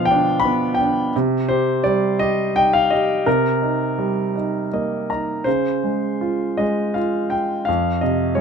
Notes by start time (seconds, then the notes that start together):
Already playing: B2 D3 F3 D#5 F5
0.05 G5
0.11 D4
0.40 B5
0.45 B3
0.74 G5
0.81 D4
1.16 C3
1.49 G4 C5
1.84 G3 D5
2.19 G4 D#5
2.56 D#4 G5
2.73 F5
2.90 G4 D#5
3.26 C3 A#4
3.62 D#4
3.98 G3
4.36 D#4
4.73 A#3 D#5
5.10 D#4 A#5
5.44 C#3 C5
5.83 G#3
6.21 F4
6.57 G#3 D#5
6.94 F4 F5
7.30 G5
7.65 F2 F5
8.01 C3 D#5
8.35 G#3 C#5